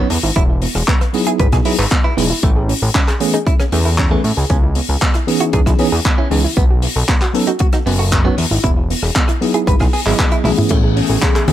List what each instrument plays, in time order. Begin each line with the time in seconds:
0.10 analog synth bass E2, clean electric guitar E3, synth arpeggio sound B3, open hi-hat
0.23 analog synth bass G#1, synth arpeggio sound E4
0.36 analog synth bass E1, synth arpeggio sound B3, clean electric guitar E4, kick, closed hi-hat
0.49 synth arpeggio sound E4
0.62 synth arpeggio sound B3, open hi-hat
0.75 analog synth bass E1, synth arpeggio sound G#4, cross-stick
0.88 synth arpeggio sound B3, kick, clap, closed hi-hat
1.01 synth arpeggio sound B4, cross-stick, closed hi-hat
1.13 tine electric piano F#3 B3 D#4 E4 G#4, synth arpeggio sound B3, open hi-hat
1.27 synth arpeggio sound E4, clean electric guitar G#4, closed hi-hat
1.39 analog synth bass G#1, synth arpeggio sound B3, clean electric guitar B4, kick, closed hi-hat
1.52 analog synth bass B1, synth arpeggio sound E4, clean electric guitar G#4, kick, cross-stick, closed hi-hat
1.65 tine electric piano F#3 B3 D#4 E4 G#4, synth arpeggio sound B3, clean electric guitar E4, open hi-hat
1.78 analog synth bass G#1, synth arpeggio sound G#4, clean electric guitar B4, clap
1.91 synth arpeggio sound B3, kick, clap
2.04 clean electric guitar E4, synth arpeggio sound B4
2.17 analog synth bass E1, clean electric guitar E3, tine electric piano F#3 B3 D#4 E4 G#4, synth arpeggio sound B3, open hi-hat
2.30 synth arpeggio sound E4
2.43 analog synth bass A1, clean electric guitar A3, synth arpeggio sound C#4, kick, closed hi-hat
2.56 synth arpeggio sound G#4
2.69 synth arpeggio sound C#4, open hi-hat
2.82 analog synth bass A1, synth arpeggio sound A4
2.95 synth arpeggio sound C#4, kick, clap
3.08 synth arpeggio sound G#4, cross-stick, clap, closed hi-hat
3.20 tine electric piano E3 A3 B3 C#4 G#4, synth arpeggio sound C#4, open hi-hat
3.34 clean electric guitar D#4, synth arpeggio sound G#4, closed hi-hat
3.47 synth arpeggio sound C#4, clean electric guitar E4, kick, closed hi-hat
3.60 clean electric guitar C#4, synth arpeggio sound G#4, cross-stick, closed hi-hat
3.72 analog synth bass E2, clean electric guitar A3, synth arpeggio sound C#4, open hi-hat
3.85 clean electric guitar E4, synth arpeggio sound A4
3.98 synth arpeggio sound C#4, kick, clap, closed hi-hat
4.11 tine electric piano E3 A3 B3 C#4 B4, clean electric guitar A3, synth arpeggio sound G#4
4.24 clean electric guitar A2, analog synth bass A2, synth arpeggio sound C#4, open hi-hat
4.37 analog synth bass C#2, synth arpeggio sound G#4
4.50 analog synth bass C#2, synth arpeggio sound B3, clean electric guitar C#4, kick, closed hi-hat
4.63 synth arpeggio sound E4
4.75 synth arpeggio sound B3, open hi-hat
4.89 analog synth bass C#2, synth arpeggio sound G#4
5.01 synth arpeggio sound B3, kick, clap, closed hi-hat
5.14 synth arpeggio sound E4, cross-stick, closed hi-hat
5.27 tine electric piano E3 B3 C#4 D#4 G#4, synth arpeggio sound B3, open hi-hat
5.40 synth arpeggio sound E4, clean electric guitar F#4, closed hi-hat
5.53 analog synth bass E2, synth arpeggio sound B3, clean electric guitar G#4, kick, closed hi-hat
5.66 analog synth bass B1, synth arpeggio sound E4, clean electric guitar E4, kick, cross-stick, closed hi-hat
5.78 tine electric piano E3 B3 C#4 D#4 G#4, synth arpeggio sound B3, clean electric guitar C#4, open hi-hat
5.92 analog synth bass E2, synth arpeggio sound G#4, clean electric guitar G#4
6.05 synth arpeggio sound B3, kick, clap, closed hi-hat
6.18 clean electric guitar C#4, synth arpeggio sound E4
6.30 analog synth bass C#2, clean electric guitar C#3, tine electric piano E3 B3 C#4 D#4 G#4, synth arpeggio sound B3, open hi-hat
6.44 synth arpeggio sound E4
6.57 analog synth bass B1, clean electric guitar B3, synth arpeggio sound B3, kick, closed hi-hat
6.70 synth arpeggio sound F#4
6.82 synth arpeggio sound B3, open hi-hat
6.96 analog synth bass B1, synth arpeggio sound A4
7.08 synth arpeggio sound B3, kick, clap, closed hi-hat
7.21 synth arpeggio sound F#4, cross-stick, clap, closed hi-hat
7.33 tine electric piano F#3 B3 C#4 D#4 A4, synth arpeggio sound B3, open hi-hat
7.47 clean electric guitar D#4, synth arpeggio sound F#4, closed hi-hat
7.59 synth arpeggio sound B3, clean electric guitar F#4, kick, closed hi-hat
7.73 clean electric guitar D#4, synth arpeggio sound F#4, cross-stick, closed hi-hat
7.86 analog synth bass F#1, clean electric guitar B3, synth arpeggio sound B3, open hi-hat
7.99 clean electric guitar F#4, synth arpeggio sound A4
8.12 synth arpeggio sound B3, kick, clap, closed hi-hat
8.25 tine electric piano F#3 B3 C#4 D#4 C#5, clean electric guitar B3, synth arpeggio sound F#4
8.38 analog synth bass E2, clean electric guitar E3, synth arpeggio sound B3, open hi-hat
8.51 analog synth bass G#1, synth arpeggio sound E4
8.64 analog synth bass E1, synth arpeggio sound B3, clean electric guitar E4, kick, closed hi-hat
8.77 synth arpeggio sound E4
8.90 synth arpeggio sound B3, open hi-hat
9.03 analog synth bass E1, synth arpeggio sound G#4, cross-stick
9.16 synth arpeggio sound B3, kick, clap
9.28 synth arpeggio sound E4, cross-stick, closed hi-hat
9.41 tine electric piano F#3 B3 D#4 E4 G#4, synth arpeggio sound B3, open hi-hat
9.54 synth arpeggio sound E4, clean electric guitar G#4, closed hi-hat
9.67 analog synth bass G#1, synth arpeggio sound B3, clean electric guitar B4, kick, closed hi-hat
9.79 analog synth bass B1, synth arpeggio sound E4, clean electric guitar G#4, kick, cross-stick, open hi-hat
9.93 synth arpeggio sound B3, clean electric guitar G#4, open hi-hat
10.05 analog synth bass G#1, tine electric piano F#3 B3 E4 G#4 D#5, clean electric guitar E4, synth arpeggio sound G#4, clap
10.19 synth arpeggio sound B3, kick, clap
10.31 synth arpeggio sound E4, clean electric guitar E4, closed hi-hat
10.44 analog synth bass B1, tine electric piano E3 A3 B3 C#4 G#4, synth arpeggio sound B3, clean electric guitar E4, open hi-hat, high tom
10.58 synth arpeggio sound E4, mid tom
10.69 analog synth bass A1, analog synth pad A3 G#4, clean electric guitar A3, synth arpeggio sound C#4, kick, closed hi-hat, crash
10.84 synth arpeggio sound G#4
10.96 synth arpeggio sound C#4, open hi-hat
11.09 analog synth bass A1, synth arpeggio sound A4
11.22 synth arpeggio sound C#4, kick, clap, closed hi-hat
11.35 synth arpeggio sound G#4, cross-stick, clap, closed hi-hat
11.48 tine electric piano E3 A3 B3 C#4 G#4, synth arpeggio sound C#4, open hi-hat, high conga